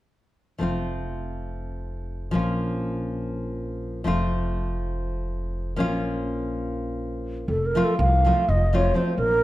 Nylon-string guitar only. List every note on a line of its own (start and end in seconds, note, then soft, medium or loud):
0.58 2.29 F3 medium
0.58 2.29 A3 medium
0.58 2.30 C4 soft
0.63 2.31 F4 medium
2.31 4.01 F3 medium
2.31 4.02 A#3 medium
2.31 4.02 C#4 medium
2.31 4.03 F4 medium
4.04 5.73 F3 medium
4.04 5.73 A3 soft
4.04 5.74 C4 medium
4.04 5.75 F4 medium
5.76 7.44 F3 medium
5.76 7.44 A#3 medium
5.76 7.45 C#4 medium
5.76 7.46 F4 medium
7.75 7.94 F3 medium
7.75 7.94 A3 medium
7.75 7.94 C4 medium
7.75 7.95 F4 medium
8.25 8.44 F3 medium
8.25 8.44 A3 medium
8.25 8.45 C4 medium
8.25 8.45 F4 medium
8.73 8.91 F3 medium
8.73 8.92 A3 medium
8.73 8.92 C4 medium
8.73 8.92 F4 medium
8.94 9.13 F3 soft
8.94 9.13 A3 soft
8.94 9.13 C4 soft
8.94 9.14 F4 soft